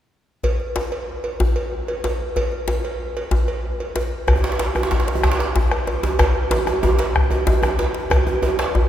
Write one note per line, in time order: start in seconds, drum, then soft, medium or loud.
0.44 cowbell medium
0.44 djembe slap soft
0.44 djembe bass medium
0.60 djembe slap soft
0.76 cowbell soft
0.76 djembe slap medium
0.76 djembe tone medium
0.92 cowbell soft
0.92 djembe slap soft
1.24 cowbell soft
1.40 djembe slap medium
1.40 djembe tone medium
1.40 djembe bass medium
1.56 cowbell soft
1.88 cowbell soft
2.04 cowbell soft
2.04 djembe slap medium
2.04 djembe tone medium
2.36 cowbell medium
2.36 djembe slap soft
2.36 djembe bass medium
2.52 djembe slap soft
2.68 cowbell soft
2.68 djembe slap medium
2.68 djembe tone medium
2.84 cowbell soft
2.84 djembe slap soft
3.17 cowbell soft
3.31 djembe slap medium
3.31 djembe tone medium
3.31 djembe bass medium
3.48 cowbell soft
3.80 cowbell soft
3.96 cowbell soft
3.96 djembe slap medium
3.96 djembe tone medium
4.28 bombo rim medium
4.28 bombo low medium
4.28 cowbell medium
4.28 djembe bass medium
4.36 djembe tone medium
4.44 djembe slap medium
4.52 djembe slap medium
4.59 cowbell soft
4.59 djembe slap medium
4.75 bombo rim medium
4.75 cowbell soft
4.75 djembe tone medium
4.83 djembe slap medium
4.91 bombo rim soft
4.91 djembe slap medium
4.91 djembe tone medium
4.91 djembe bass medium
5.00 djembe slap medium
5.08 cowbell soft
5.08 djembe slap medium
5.15 djembe tone medium
5.23 bombo rim medium
5.23 bombo low medium
5.23 djembe slap medium
5.32 djembe slap medium
5.39 cowbell soft
5.39 djembe slap medium
5.56 bombo rim soft
5.56 djembe slap medium
5.56 djembe bass medium
5.71 bombo rim medium
5.71 cowbell soft
5.87 cowbell soft
5.87 djembe tone medium
6.03 djembe slap medium
6.03 djembe tone medium
6.19 bombo rim medium
6.19 bombo low medium
6.19 cowbell medium
6.19 djembe slap medium
6.19 djembe bass medium
6.51 cowbell soft
6.51 djembe slap medium
6.51 djembe tone medium
6.67 bombo rim medium
6.67 cowbell soft
6.67 djembe tone medium
6.83 bombo rim soft
6.83 djembe tone loud
6.83 djembe tone medium
6.83 djembe bass medium
6.99 cowbell medium
6.99 djembe slap medium
7.16 bombo rim medium
7.16 bombo low medium
7.31 cowbell soft
7.31 djembe tone medium
7.47 bombo rim soft
7.47 djembe slap medium
7.47 djembe tone medium
7.47 djembe bass medium
7.63 bombo rim medium
7.63 cowbell soft
7.63 djembe tone medium
7.79 cowbell soft
7.79 djembe slap medium
7.79 djembe tone medium
7.94 djembe slap medium
8.10 bombo rim medium
8.10 bombo low medium
8.10 cowbell medium
8.10 djembe tone medium
8.10 djembe bass medium
8.27 djembe tone medium
8.42 cowbell soft
8.42 djembe tone medium
8.59 bombo rim medium
8.59 cowbell soft
8.59 djembe slap medium
8.75 bombo rim soft
8.75 djembe tone medium
8.75 djembe bass medium